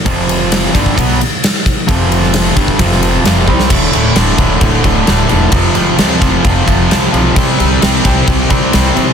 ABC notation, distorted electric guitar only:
X:1
M:4/4
L:1/8
Q:1/4=131
K:Flyd
V:1 name="Distorted electric guitar" clef=bass
[F,,C,F,]3 [G,,D,G,] [B,,^F,B,] z3 | [F,,C,F,]3 [G,,D,G,] [F,,C,F,]2 [F,,C,F,] [C,G,C] | [D,,A,,D,] [D,,A,,D,] [D,,A,,D,] [D,,A,,D,] [D,,A,,D,] [D,,A,,D,] [D,,A,,D,] [D,,A,,D,] | [F,,C,F,] [F,,C,F,] [F,,C,F,] [F,,C,F,] [F,,C,F,] [F,,C,F,] [F,,C,F,] [F,,C,F,] |
[C,G,C] [C,G,C] [C,G,C] [C,G,C] [C,G,C] [C,G,C] [C,G,C] [C,G,C] |]